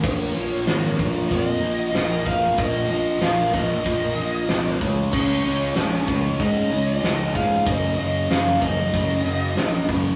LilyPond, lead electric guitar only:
\new Staff \with { instrumentName = "Lead electric guitar" } { \time 4/4 \key bes \minor \tempo 4 = 94 des''2 ees''8. ees''8. f''8 | ees''8 ees''8 f''8 ees''2 r8 | des''2 ees''8. ees''8. f''8 | ees''8 ees''8 f''8 ees''2 r8 | }